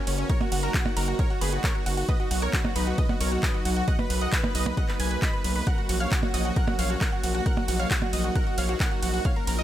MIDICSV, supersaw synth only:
0, 0, Header, 1, 2, 480
1, 0, Start_track
1, 0, Key_signature, 6, "major"
1, 0, Tempo, 447761
1, 316, Time_signature, 4, 2, 24, 8
1, 10328, End_track
2, 0, Start_track
2, 0, Title_t, "Supersaw synth"
2, 0, Program_c, 0, 81
2, 75, Note_on_c, 0, 61, 65
2, 169, Note_off_c, 0, 61, 0
2, 196, Note_on_c, 0, 61, 65
2, 290, Note_off_c, 0, 61, 0
2, 316, Note_on_c, 0, 70, 78
2, 316, Note_on_c, 0, 73, 103
2, 410, Note_off_c, 0, 70, 0
2, 410, Note_off_c, 0, 73, 0
2, 436, Note_on_c, 0, 66, 68
2, 530, Note_off_c, 0, 66, 0
2, 557, Note_on_c, 0, 66, 66
2, 650, Note_off_c, 0, 66, 0
2, 676, Note_on_c, 0, 70, 95
2, 677, Note_on_c, 0, 66, 78
2, 770, Note_off_c, 0, 66, 0
2, 770, Note_off_c, 0, 70, 0
2, 797, Note_on_c, 0, 66, 64
2, 890, Note_off_c, 0, 66, 0
2, 916, Note_on_c, 0, 66, 66
2, 1010, Note_off_c, 0, 66, 0
2, 1037, Note_on_c, 0, 66, 83
2, 1037, Note_on_c, 0, 70, 95
2, 1130, Note_off_c, 0, 66, 0
2, 1130, Note_off_c, 0, 70, 0
2, 1156, Note_on_c, 0, 66, 68
2, 1250, Note_off_c, 0, 66, 0
2, 1277, Note_on_c, 0, 70, 80
2, 1277, Note_on_c, 0, 73, 96
2, 1370, Note_off_c, 0, 70, 0
2, 1370, Note_off_c, 0, 73, 0
2, 1396, Note_on_c, 0, 66, 63
2, 1490, Note_off_c, 0, 66, 0
2, 1516, Note_on_c, 0, 68, 80
2, 1516, Note_on_c, 0, 71, 88
2, 1610, Note_off_c, 0, 68, 0
2, 1610, Note_off_c, 0, 71, 0
2, 1636, Note_on_c, 0, 66, 64
2, 1730, Note_off_c, 0, 66, 0
2, 1755, Note_on_c, 0, 70, 73
2, 1755, Note_on_c, 0, 73, 91
2, 1849, Note_off_c, 0, 70, 0
2, 1849, Note_off_c, 0, 73, 0
2, 1876, Note_on_c, 0, 66, 63
2, 1970, Note_off_c, 0, 66, 0
2, 1995, Note_on_c, 0, 66, 63
2, 2089, Note_off_c, 0, 66, 0
2, 2115, Note_on_c, 0, 66, 65
2, 2209, Note_off_c, 0, 66, 0
2, 2235, Note_on_c, 0, 71, 79
2, 2235, Note_on_c, 0, 75, 105
2, 2329, Note_off_c, 0, 71, 0
2, 2329, Note_off_c, 0, 75, 0
2, 2356, Note_on_c, 0, 66, 69
2, 2450, Note_off_c, 0, 66, 0
2, 2475, Note_on_c, 0, 66, 68
2, 2569, Note_off_c, 0, 66, 0
2, 2596, Note_on_c, 0, 70, 80
2, 2596, Note_on_c, 0, 73, 96
2, 2690, Note_off_c, 0, 70, 0
2, 2690, Note_off_c, 0, 73, 0
2, 2716, Note_on_c, 0, 66, 68
2, 2810, Note_off_c, 0, 66, 0
2, 2837, Note_on_c, 0, 66, 66
2, 2930, Note_off_c, 0, 66, 0
2, 2956, Note_on_c, 0, 63, 81
2, 2956, Note_on_c, 0, 71, 89
2, 3050, Note_off_c, 0, 63, 0
2, 3050, Note_off_c, 0, 71, 0
2, 3078, Note_on_c, 0, 66, 65
2, 3171, Note_off_c, 0, 66, 0
2, 3197, Note_on_c, 0, 71, 78
2, 3197, Note_on_c, 0, 75, 95
2, 3290, Note_off_c, 0, 71, 0
2, 3291, Note_off_c, 0, 75, 0
2, 3317, Note_on_c, 0, 66, 65
2, 3410, Note_off_c, 0, 66, 0
2, 3436, Note_on_c, 0, 73, 90
2, 3437, Note_on_c, 0, 70, 76
2, 3530, Note_off_c, 0, 70, 0
2, 3530, Note_off_c, 0, 73, 0
2, 3558, Note_on_c, 0, 66, 68
2, 3651, Note_off_c, 0, 66, 0
2, 3676, Note_on_c, 0, 71, 72
2, 3676, Note_on_c, 0, 75, 95
2, 3770, Note_off_c, 0, 71, 0
2, 3770, Note_off_c, 0, 75, 0
2, 3797, Note_on_c, 0, 66, 61
2, 3890, Note_off_c, 0, 66, 0
2, 3917, Note_on_c, 0, 66, 66
2, 4010, Note_off_c, 0, 66, 0
2, 4037, Note_on_c, 0, 66, 64
2, 4130, Note_off_c, 0, 66, 0
2, 4158, Note_on_c, 0, 75, 79
2, 4158, Note_on_c, 0, 78, 106
2, 4251, Note_off_c, 0, 75, 0
2, 4251, Note_off_c, 0, 78, 0
2, 4277, Note_on_c, 0, 71, 66
2, 4370, Note_off_c, 0, 71, 0
2, 4397, Note_on_c, 0, 71, 67
2, 4490, Note_off_c, 0, 71, 0
2, 4516, Note_on_c, 0, 75, 78
2, 4516, Note_on_c, 0, 78, 93
2, 4610, Note_off_c, 0, 75, 0
2, 4610, Note_off_c, 0, 78, 0
2, 4637, Note_on_c, 0, 71, 64
2, 4730, Note_off_c, 0, 71, 0
2, 4756, Note_on_c, 0, 71, 66
2, 4850, Note_off_c, 0, 71, 0
2, 4877, Note_on_c, 0, 71, 80
2, 4878, Note_on_c, 0, 75, 93
2, 4970, Note_off_c, 0, 71, 0
2, 4971, Note_off_c, 0, 75, 0
2, 4997, Note_on_c, 0, 71, 66
2, 5090, Note_off_c, 0, 71, 0
2, 5117, Note_on_c, 0, 75, 80
2, 5117, Note_on_c, 0, 78, 92
2, 5210, Note_off_c, 0, 75, 0
2, 5210, Note_off_c, 0, 78, 0
2, 5237, Note_on_c, 0, 71, 65
2, 5330, Note_off_c, 0, 71, 0
2, 5356, Note_on_c, 0, 71, 80
2, 5356, Note_on_c, 0, 80, 91
2, 5450, Note_off_c, 0, 71, 0
2, 5450, Note_off_c, 0, 80, 0
2, 5475, Note_on_c, 0, 71, 66
2, 5569, Note_off_c, 0, 71, 0
2, 5595, Note_on_c, 0, 83, 95
2, 5596, Note_on_c, 0, 75, 74
2, 5689, Note_off_c, 0, 83, 0
2, 5690, Note_off_c, 0, 75, 0
2, 5716, Note_on_c, 0, 71, 61
2, 5809, Note_off_c, 0, 71, 0
2, 5836, Note_on_c, 0, 71, 63
2, 5930, Note_off_c, 0, 71, 0
2, 5956, Note_on_c, 0, 71, 64
2, 6050, Note_off_c, 0, 71, 0
2, 6076, Note_on_c, 0, 78, 104
2, 6077, Note_on_c, 0, 70, 78
2, 6170, Note_off_c, 0, 70, 0
2, 6170, Note_off_c, 0, 78, 0
2, 6196, Note_on_c, 0, 66, 66
2, 6290, Note_off_c, 0, 66, 0
2, 6317, Note_on_c, 0, 66, 68
2, 6410, Note_off_c, 0, 66, 0
2, 6437, Note_on_c, 0, 73, 77
2, 6437, Note_on_c, 0, 77, 91
2, 6530, Note_off_c, 0, 73, 0
2, 6530, Note_off_c, 0, 77, 0
2, 6557, Note_on_c, 0, 66, 64
2, 6650, Note_off_c, 0, 66, 0
2, 6678, Note_on_c, 0, 66, 65
2, 6771, Note_off_c, 0, 66, 0
2, 6797, Note_on_c, 0, 75, 91
2, 6798, Note_on_c, 0, 66, 82
2, 6890, Note_off_c, 0, 75, 0
2, 6891, Note_off_c, 0, 66, 0
2, 6918, Note_on_c, 0, 66, 67
2, 7011, Note_off_c, 0, 66, 0
2, 7036, Note_on_c, 0, 70, 79
2, 7036, Note_on_c, 0, 78, 93
2, 7130, Note_off_c, 0, 70, 0
2, 7130, Note_off_c, 0, 78, 0
2, 7157, Note_on_c, 0, 66, 63
2, 7250, Note_off_c, 0, 66, 0
2, 7276, Note_on_c, 0, 73, 75
2, 7276, Note_on_c, 0, 77, 88
2, 7370, Note_off_c, 0, 73, 0
2, 7370, Note_off_c, 0, 77, 0
2, 7397, Note_on_c, 0, 66, 68
2, 7490, Note_off_c, 0, 66, 0
2, 7516, Note_on_c, 0, 70, 72
2, 7517, Note_on_c, 0, 78, 94
2, 7610, Note_off_c, 0, 70, 0
2, 7610, Note_off_c, 0, 78, 0
2, 7637, Note_on_c, 0, 66, 62
2, 7730, Note_off_c, 0, 66, 0
2, 7757, Note_on_c, 0, 66, 62
2, 7850, Note_off_c, 0, 66, 0
2, 7877, Note_on_c, 0, 66, 65
2, 7970, Note_off_c, 0, 66, 0
2, 7995, Note_on_c, 0, 70, 75
2, 7996, Note_on_c, 0, 78, 100
2, 8089, Note_off_c, 0, 70, 0
2, 8090, Note_off_c, 0, 78, 0
2, 8115, Note_on_c, 0, 66, 68
2, 8209, Note_off_c, 0, 66, 0
2, 8236, Note_on_c, 0, 66, 65
2, 8330, Note_off_c, 0, 66, 0
2, 8354, Note_on_c, 0, 73, 79
2, 8355, Note_on_c, 0, 77, 99
2, 8449, Note_off_c, 0, 73, 0
2, 8449, Note_off_c, 0, 77, 0
2, 8475, Note_on_c, 0, 66, 65
2, 8569, Note_off_c, 0, 66, 0
2, 8595, Note_on_c, 0, 66, 68
2, 8689, Note_off_c, 0, 66, 0
2, 8715, Note_on_c, 0, 66, 80
2, 8715, Note_on_c, 0, 75, 89
2, 8809, Note_off_c, 0, 66, 0
2, 8809, Note_off_c, 0, 75, 0
2, 8836, Note_on_c, 0, 66, 66
2, 8930, Note_off_c, 0, 66, 0
2, 8956, Note_on_c, 0, 70, 84
2, 8956, Note_on_c, 0, 78, 95
2, 9050, Note_off_c, 0, 70, 0
2, 9050, Note_off_c, 0, 78, 0
2, 9077, Note_on_c, 0, 66, 65
2, 9170, Note_off_c, 0, 66, 0
2, 9197, Note_on_c, 0, 73, 77
2, 9197, Note_on_c, 0, 77, 94
2, 9290, Note_off_c, 0, 73, 0
2, 9290, Note_off_c, 0, 77, 0
2, 9317, Note_on_c, 0, 66, 66
2, 9410, Note_off_c, 0, 66, 0
2, 9436, Note_on_c, 0, 70, 77
2, 9437, Note_on_c, 0, 78, 92
2, 9530, Note_off_c, 0, 70, 0
2, 9530, Note_off_c, 0, 78, 0
2, 9556, Note_on_c, 0, 66, 62
2, 9650, Note_off_c, 0, 66, 0
2, 9676, Note_on_c, 0, 66, 65
2, 9770, Note_off_c, 0, 66, 0
2, 9796, Note_on_c, 0, 66, 67
2, 9890, Note_off_c, 0, 66, 0
2, 9918, Note_on_c, 0, 73, 76
2, 9918, Note_on_c, 0, 77, 98
2, 10011, Note_off_c, 0, 73, 0
2, 10011, Note_off_c, 0, 77, 0
2, 10037, Note_on_c, 0, 70, 66
2, 10131, Note_off_c, 0, 70, 0
2, 10157, Note_on_c, 0, 70, 69
2, 10250, Note_off_c, 0, 70, 0
2, 10277, Note_on_c, 0, 70, 76
2, 10277, Note_on_c, 0, 75, 93
2, 10328, Note_off_c, 0, 70, 0
2, 10328, Note_off_c, 0, 75, 0
2, 10328, End_track
0, 0, End_of_file